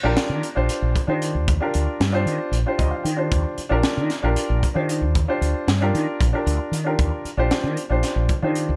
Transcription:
0.03 0.15 A#1 medium
0.03 0.46 D4 medium
0.03 0.46 F4 medium
0.03 0.46 G4 medium
0.03 0.47 A#4 medium
0.17 snare loud
0.17 closed hi-hat medium
0.29 0.41 D#3 medium
0.43 closed hi-hat medium
0.55 0.68 A#1 medium
0.55 0.98 D4 medium
0.55 0.98 F4 medium
0.55 0.98 G4 medium
0.55 0.99 C5 medium
0.69 muted fretless electric bass stroke soft
0.69 closed hi-hat medium
0.82 0.94 A#1 medium
0.96 kick medium
0.96 closed hi-hat medium
1.07 1.36 D#3 medium
1.07 1.50 D4 medium
1.07 1.50 F4 medium
1.07 1.51 G4 medium
1.07 1.51 C5 medium
1.22 closed hi-hat medium
1.34 1.58 D#2 medium
1.48 kick loud
1.48 closed hi-hat medium
1.60 2.03 D4 medium
1.60 2.03 F4 medium
1.60 2.03 G4 medium
1.60 2.04 A#4 medium
1.74 1.86 D2 medium
1.74 closed hi-hat medium
2.00 2.23 G2 medium
2.00 snare loud
2.00 closed hi-hat medium
2.12 2.55 D4 medium
2.12 2.55 F4 medium
2.12 2.56 G4 medium
2.12 2.56 C5 medium
2.26 2.38 D#3 medium
2.26 closed hi-hat medium
2.51 2.63 A#1 medium
2.51 closed hi-hat medium
2.66 3.08 D4 medium
2.66 3.08 F4 medium
2.66 3.09 G4 medium
2.66 3.09 C5 medium
2.78 2.91 D2 loud
2.78 2.91 D#5 medium
2.78 kick medium
2.78 closed hi-hat medium
2.91 3.04 F5 medium
3.03 3.28 D#3 medium
3.03 3.28 G5 medium
3.03 closed hi-hat medium
3.16 3.60 D4 medium
3.16 3.59 F4 medium
3.16 3.60 G4 medium
3.16 3.60 C5 medium
3.32 3.43 D#2 medium
3.32 kick loud
3.32 closed hi-hat medium
3.57 muted fretless electric bass stroke soft
3.57 closed hi-hat medium
3.69 3.82 A#1 medium
3.69 4.12 D4 medium
3.69 4.12 F4 medium
3.69 4.13 G4 medium
3.69 4.13 A#4 medium
3.83 muted fretless electric bass stroke soft
3.83 snare medium
3.83 closed hi-hat medium
3.97 4.08 D#3 medium
4.10 snare soft
4.10 closed hi-hat medium
4.22 4.35 A#1 medium
4.22 4.65 D4 medium
4.22 4.65 F4 medium
4.22 4.65 G4 medium
4.22 4.66 A#4 medium
4.36 muted fretless electric bass stroke soft
4.36 closed hi-hat medium
4.49 4.61 A#1 medium
4.63 kick medium
4.63 closed hi-hat medium
4.74 5.03 D#3 medium
4.74 5.17 D4 medium
4.74 5.17 F4 medium
4.74 5.18 G4 medium
4.74 5.18 C5 medium
4.89 closed hi-hat medium
5.01 5.25 D#2 medium
5.15 kick loud
5.15 closed hi-hat medium
5.28 5.70 D4 medium
5.28 5.70 F4 medium
5.28 5.71 G4 medium
5.28 5.71 C5 medium
5.41 5.53 D2 medium
5.41 closed hi-hat medium
5.67 5.90 G2 medium
5.67 snare medium
5.67 closed hi-hat medium
5.80 6.23 D4 medium
5.80 6.23 F4 medium
5.80 6.23 G4 medium
5.80 6.23 A#4 medium
5.94 6.05 D#3 medium
5.94 closed hi-hat medium
6.21 6.32 A#1 medium
6.21 kick medium
6.21 closed hi-hat medium
6.33 6.75 D4 medium
6.33 6.75 F4 medium
6.33 6.76 G4 medium
6.33 6.76 A#4 medium
6.46 6.58 D2 medium
6.46 closed hi-hat medium
6.71 6.95 D#3 medium
6.71 closed hi-hat medium
6.84 7.27 D4 medium
6.84 7.28 F4 medium
6.84 7.28 G4 medium
6.84 7.28 A#4 medium
6.99 7.10 D#2 medium
6.99 kick loud
6.99 closed hi-hat medium
7.24 muted fretless electric bass stroke soft
7.24 closed hi-hat medium
7.37 7.49 A#1 medium
7.37 7.80 D4 medium
7.37 7.80 F4 medium
7.37 7.81 G4 medium
7.37 7.81 C5 medium
7.51 snare loud
7.51 closed hi-hat medium
7.63 7.75 D#3 medium
7.77 closed hi-hat medium
7.90 8.02 A#1 medium
7.90 8.32 D4 medium
7.90 8.32 F4 medium
7.90 8.33 G4 medium
7.90 8.33 C5 medium
8.03 muted fretless electric bass stroke soft
8.03 snare soft
8.03 closed hi-hat medium
8.15 8.27 A#1 medium
8.29 kick medium
8.29 closed hi-hat medium
8.42 8.70 D#3 medium
8.42 8.76 D4 medium
8.42 8.76 F4 medium
8.42 8.76 G4 medium
8.42 8.76 C5 medium
8.55 closed hi-hat medium
8.69 8.76 D#2 medium

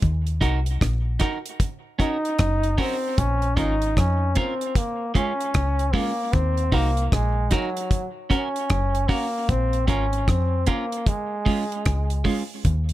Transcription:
0.02 0.41 D#2 loud
0.02 kick loud
0.02 closed hi-hat medium
0.27 closed hi-hat soft
0.41 0.80 C2 medium
0.41 0.58 D#4 medium
0.41 0.59 F#4 medium
0.41 0.59 A#4 medium
0.41 kick medium
0.41 closed hi-hat medium
0.66 closed hi-hat soft
0.81 1.19 A#1 medium
0.81 kick loud
0.81 cross-stick loud
0.81 closed hi-hat medium
1.20 1.37 D#4 medium
1.20 1.38 F#4 medium
1.20 1.38 A#4 medium
1.20 kick medium
1.20 cross-stick medium
1.20 closed hi-hat medium
1.46 closed hi-hat medium
1.60 kick loud
1.60 closed hi-hat medium
1.99 2.16 C#4 medium
1.99 2.81 D#4 loud
1.99 2.17 F#4 medium
1.99 2.17 A#4 medium
1.99 kick medium
1.99 closed hi-hat medium
2.25 closed hi-hat soft
2.39 2.77 F#1 loud
2.39 kick loud
2.39 cross-stick loud
2.39 closed hi-hat medium
2.63 closed hi-hat soft
2.78 3.20 C4 medium
2.78 2.95 C#4 medium
2.78 2.96 F#4 medium
2.78 2.96 A#4 loud
2.78 kick medium
2.78 open hi-hat medium
3.18 3.56 A#1 medium
3.18 3.59 C#4 loud
3.18 kick loud
3.18 closed hi-hat medium
3.42 closed hi-hat soft
3.57 3.95 G#1 medium
3.57 3.74 C#4 medium
3.57 3.99 D#4 loud
3.57 3.74 F4 medium
3.57 3.75 A#4 medium
3.57 kick medium
3.57 closed hi-hat medium
3.82 closed hi-hat soft
3.97 4.35 F2 medium
3.97 4.38 C#4 medium
3.97 kick loud
3.97 cross-stick loud
3.97 closed hi-hat medium
4.35 4.78 C4 medium
4.35 4.53 C#4 medium
4.35 4.53 F4 medium
4.35 4.54 A#4 medium
4.35 kick medium
4.35 closed hi-hat medium
4.61 closed hi-hat medium
4.75 5.15 A#3 loud
4.75 kick loud
4.75 closed hi-hat loud
5.14 5.32 G#3 medium
5.14 5.32 C#4 medium
5.14 5.96 C#4 medium
5.14 5.32 F4 medium
5.14 kick medium
5.14 closed hi-hat medium
5.41 closed hi-hat medium
5.54 5.93 C#2 medium
5.54 kick loud
5.54 cross-stick loud
5.54 closed hi-hat medium
5.79 closed hi-hat medium
5.93 6.11 G#3 medium
5.93 6.35 A#3 medium
5.93 6.11 C#4 medium
5.93 6.11 F4 medium
5.93 kick medium
5.93 open hi-hat medium
6.33 6.72 D#2 loud
6.33 6.76 C4 medium
6.33 kick loud
6.33 closed hi-hat medium
6.57 closed hi-hat soft
6.72 7.11 C2 medium
6.72 7.08 A#3 medium
6.72 6.89 D#4 medium
6.72 6.90 F#4 medium
6.72 6.90 A#4 medium
6.72 kick medium
6.72 open hi-hat medium
6.97 closed hi-hat soft
7.08 7.15 A#3 medium
7.12 7.50 A#1 medium
7.12 7.54 G#3 medium
7.12 kick loud
7.12 cross-stick medium
7.12 closed hi-hat medium
7.51 8.07 F#3 medium
7.51 7.68 D#4 medium
7.51 7.69 F#4 medium
7.51 7.69 A#4 medium
7.51 kick medium
7.51 cross-stick medium
7.51 closed hi-hat medium
7.77 closed hi-hat medium
7.91 kick loud
7.91 closed hi-hat medium
8.30 8.47 C#4 medium
8.30 9.11 C#4 medium
8.30 8.48 F#4 medium
8.30 8.48 A#4 medium
8.30 kick medium
8.30 closed hi-hat medium
8.56 closed hi-hat soft
8.70 9.08 F#1 medium
8.70 kick loud
8.70 cross-stick loud
8.70 closed hi-hat medium
8.95 closed hi-hat soft
9.09 9.51 A#3 medium
9.09 9.26 C#4 medium
9.09 9.26 F#4 medium
9.09 9.27 A#4 medium
9.09 kick medium
9.09 open hi-hat medium
9.49 9.87 A#1 medium
9.49 9.88 C4 loud
9.49 kick loud
9.49 closed hi-hat medium
9.73 closed hi-hat soft
9.88 10.26 G#1 medium
9.88 10.05 C#4 medium
9.88 10.30 C#4 medium
9.88 10.05 F4 medium
9.88 10.06 A#4 medium
9.88 kick medium
9.88 closed hi-hat medium
10.13 closed hi-hat soft
10.28 10.66 F2 medium
10.28 10.70 C4 medium
10.28 kick loud
10.28 cross-stick medium
10.28 closed hi-hat medium
10.66 11.09 A#3 medium
10.66 10.84 C#4 medium
10.66 10.84 F4 medium
10.66 10.85 A#4 medium
10.66 kick medium
10.66 closed hi-hat medium
10.92 closed hi-hat medium
11.07 12.26 G#3 medium
11.07 kick loud
11.07 closed hi-hat medium
11.46 11.63 G#3 medium
11.46 11.63 C#4 medium
11.46 11.64 F4 medium
11.46 kick medium
11.46 open hi-hat soft
11.72 closed hi-hat soft
11.86 12.24 C#2 medium
11.86 kick loud
11.86 cross-stick loud
11.86 closed hi-hat medium
12.10 closed hi-hat soft
12.24 12.42 G#3 medium
12.24 12.42 C#4 medium
12.24 12.43 F4 medium
12.24 kick medium
12.24 open hi-hat medium
12.65 12.93 D#2 loud
12.65 kick loud
12.65 closed hi-hat medium
12.89 closed hi-hat soft

